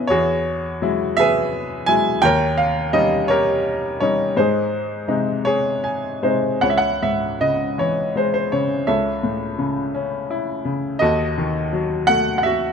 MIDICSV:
0, 0, Header, 1, 2, 480
1, 0, Start_track
1, 0, Tempo, 713436
1, 67, Time_signature, 6, 3, 24, 8
1, 3425, Tempo, 771208
1, 5345, Tempo, 715990
1, 8396, End_track
2, 0, Start_track
2, 0, Title_t, "Grand piano"
2, 0, Program_c, 0, 0
2, 0, Control_c, 0, 64, 127
2, 0, Note_on_c, 0, 59, 44
2, 0, Note_on_c, 0, 61, 40
2, 0, Note_on_c, 0, 64, 50
2, 0, Note_on_c, 0, 68, 62
2, 0, Note_on_c, 0, 71, 62
2, 0, Note_on_c, 0, 75, 79
2, 0, Note_on_c, 0, 76, 71
2, 50, Note_on_c, 0, 73, 83
2, 67, Note_on_c, 0, 40, 61
2, 71, Note_on_c, 0, 66, 57
2, 75, Note_off_c, 0, 68, 0
2, 75, Control_c, 0, 64, 0
2, 75, Note_on_c, 0, 68, 56
2, 77, Note_off_c, 0, 59, 0
2, 79, Note_off_c, 0, 61, 0
2, 79, Note_off_c, 0, 76, 0
2, 80, Note_off_c, 0, 64, 0
2, 81, Note_off_c, 0, 71, 0
2, 86, Note_off_c, 0, 75, 0
2, 198, Control_c, 0, 64, 127
2, 551, Note_on_c, 0, 54, 48
2, 551, Note_on_c, 0, 56, 41
2, 557, Note_on_c, 0, 64, 51
2, 755, Note_off_c, 0, 73, 0
2, 765, Note_off_c, 0, 66, 0
2, 767, Note_off_c, 0, 68, 0
2, 784, Note_on_c, 0, 76, 94
2, 804, Note_on_c, 0, 71, 68
2, 805, Note_on_c, 0, 68, 64
2, 1011, Note_off_c, 0, 54, 0
2, 1011, Note_off_c, 0, 56, 0
2, 1014, Note_off_c, 0, 64, 0
2, 1233, Note_off_c, 0, 76, 0
2, 1254, Note_on_c, 0, 80, 92
2, 1264, Note_on_c, 0, 54, 49
2, 1265, Note_on_c, 0, 56, 48
2, 1270, Note_on_c, 0, 64, 57
2, 1472, Note_off_c, 0, 40, 0
2, 1478, Note_off_c, 0, 71, 0
2, 1478, Note_off_c, 0, 80, 0
2, 1479, Note_off_c, 0, 68, 0
2, 1492, Note_off_c, 0, 54, 0
2, 1492, Note_on_c, 0, 79, 100
2, 1493, Note_off_c, 0, 56, 0
2, 1496, Note_off_c, 0, 64, 0
2, 1501, Note_on_c, 0, 39, 62
2, 1508, Control_c, 0, 64, 0
2, 1513, Note_on_c, 0, 73, 68
2, 1514, Note_on_c, 0, 70, 72
2, 1625, Control_c, 0, 64, 127
2, 1732, Note_on_c, 0, 77, 85
2, 1740, Note_off_c, 0, 79, 0
2, 1957, Note_off_c, 0, 77, 0
2, 1972, Note_on_c, 0, 55, 54
2, 1973, Note_on_c, 0, 75, 82
2, 1976, Note_on_c, 0, 61, 47
2, 1977, Note_on_c, 0, 63, 54
2, 2198, Note_off_c, 0, 70, 0
2, 2198, Note_off_c, 0, 73, 0
2, 2208, Note_on_c, 0, 73, 84
2, 2222, Note_on_c, 0, 70, 66
2, 2223, Note_off_c, 0, 75, 0
2, 2223, Note_on_c, 0, 67, 59
2, 2443, Note_off_c, 0, 55, 0
2, 2445, Note_off_c, 0, 61, 0
2, 2446, Note_off_c, 0, 63, 0
2, 2668, Note_off_c, 0, 73, 0
2, 2694, Note_on_c, 0, 73, 77
2, 2699, Note_on_c, 0, 55, 46
2, 2701, Note_on_c, 0, 61, 42
2, 2704, Note_on_c, 0, 63, 55
2, 2912, Note_off_c, 0, 39, 0
2, 2913, Note_off_c, 0, 67, 0
2, 2913, Note_off_c, 0, 70, 0
2, 2918, Note_off_c, 0, 73, 0
2, 2930, Note_off_c, 0, 55, 0
2, 2931, Note_off_c, 0, 61, 0
2, 2933, Note_off_c, 0, 63, 0
2, 2937, Note_on_c, 0, 44, 60
2, 2940, Note_on_c, 0, 72, 67
2, 2946, Control_c, 0, 64, 0
2, 2952, Note_on_c, 0, 63, 47
2, 2957, Note_on_c, 0, 68, 46
2, 3084, Control_c, 0, 64, 127
2, 3410, Note_off_c, 0, 63, 0
2, 3418, Note_on_c, 0, 56, 45
2, 3419, Note_on_c, 0, 48, 41
2, 3420, Note_on_c, 0, 63, 50
2, 3648, Note_on_c, 0, 73, 83
2, 3651, Note_off_c, 0, 68, 0
2, 3660, Note_on_c, 0, 68, 59
2, 3871, Note_off_c, 0, 72, 0
2, 3878, Note_off_c, 0, 48, 0
2, 3878, Note_off_c, 0, 56, 0
2, 3879, Note_off_c, 0, 63, 0
2, 3889, Note_on_c, 0, 80, 53
2, 4118, Note_off_c, 0, 80, 0
2, 4131, Note_on_c, 0, 56, 43
2, 4136, Note_on_c, 0, 72, 53
2, 4137, Note_on_c, 0, 48, 35
2, 4141, Note_on_c, 0, 63, 44
2, 4357, Note_off_c, 0, 73, 0
2, 4361, Note_off_c, 0, 44, 0
2, 4364, Note_off_c, 0, 68, 0
2, 4368, Note_off_c, 0, 72, 0
2, 4373, Note_on_c, 0, 78, 69
2, 4376, Note_off_c, 0, 56, 0
2, 4378, Note_off_c, 0, 48, 0
2, 4381, Note_off_c, 0, 63, 0
2, 4381, Note_on_c, 0, 37, 44
2, 4384, Note_on_c, 0, 73, 52
2, 4395, Control_c, 0, 64, 0
2, 4422, Note_off_c, 0, 78, 0
2, 4425, Note_on_c, 0, 76, 61
2, 4474, Note_on_c, 0, 78, 70
2, 4475, Note_off_c, 0, 76, 0
2, 4484, Control_c, 0, 64, 127
2, 4621, Note_off_c, 0, 78, 0
2, 4628, Note_on_c, 0, 44, 40
2, 4629, Note_on_c, 0, 76, 68
2, 4867, Note_on_c, 0, 75, 69
2, 4869, Note_on_c, 0, 49, 39
2, 4881, Note_off_c, 0, 76, 0
2, 5086, Note_off_c, 0, 73, 0
2, 5099, Note_on_c, 0, 52, 43
2, 5106, Note_on_c, 0, 73, 70
2, 5115, Note_off_c, 0, 75, 0
2, 5333, Note_on_c, 0, 56, 44
2, 5342, Note_on_c, 0, 72, 59
2, 5346, Note_off_c, 0, 73, 0
2, 5444, Note_off_c, 0, 72, 0
2, 5454, Note_on_c, 0, 72, 60
2, 5554, Note_off_c, 0, 44, 0
2, 5571, Note_off_c, 0, 49, 0
2, 5577, Note_on_c, 0, 73, 67
2, 5581, Note_on_c, 0, 49, 42
2, 5583, Note_off_c, 0, 72, 0
2, 5792, Note_off_c, 0, 37, 0
2, 5793, Note_off_c, 0, 52, 0
2, 5801, Note_off_c, 0, 73, 0
2, 5803, Note_off_c, 0, 56, 0
2, 5811, Note_on_c, 0, 73, 47
2, 5811, Note_on_c, 0, 76, 66
2, 5813, Note_off_c, 0, 49, 0
2, 5816, Note_on_c, 0, 69, 48
2, 5817, Note_on_c, 0, 37, 49
2, 5831, Control_c, 0, 64, 0
2, 5945, Control_c, 0, 64, 127
2, 6054, Note_on_c, 0, 45, 46
2, 6290, Note_on_c, 0, 49, 45
2, 6530, Note_on_c, 0, 61, 50
2, 6735, Note_off_c, 0, 73, 0
2, 6735, Note_off_c, 0, 76, 0
2, 6738, Note_off_c, 0, 69, 0
2, 6773, Note_on_c, 0, 64, 51
2, 6979, Note_off_c, 0, 45, 0
2, 6994, Note_off_c, 0, 49, 0
2, 7004, Note_on_c, 0, 49, 51
2, 7220, Note_off_c, 0, 37, 0
2, 7228, Note_off_c, 0, 61, 0
2, 7233, Note_on_c, 0, 75, 79
2, 7237, Note_off_c, 0, 64, 0
2, 7240, Note_off_c, 0, 49, 0
2, 7248, Note_on_c, 0, 66, 59
2, 7250, Note_on_c, 0, 69, 55
2, 7251, Note_on_c, 0, 39, 58
2, 7258, Control_c, 0, 64, 0
2, 7373, Control_c, 0, 64, 127
2, 7492, Note_on_c, 0, 51, 51
2, 7727, Note_on_c, 0, 54, 53
2, 7946, Note_off_c, 0, 66, 0
2, 7947, Note_off_c, 0, 69, 0
2, 7955, Note_on_c, 0, 78, 87
2, 7969, Note_on_c, 0, 57, 51
2, 7987, Note_off_c, 0, 75, 0
2, 8147, Note_off_c, 0, 78, 0
2, 8164, Note_on_c, 0, 78, 58
2, 8198, Note_on_c, 0, 76, 72
2, 8213, Note_off_c, 0, 78, 0
2, 8218, Note_on_c, 0, 66, 51
2, 8396, Note_off_c, 0, 39, 0
2, 8396, Note_off_c, 0, 51, 0
2, 8396, Note_off_c, 0, 54, 0
2, 8396, Note_off_c, 0, 57, 0
2, 8396, Note_off_c, 0, 66, 0
2, 8396, Note_off_c, 0, 76, 0
2, 8396, End_track
0, 0, End_of_file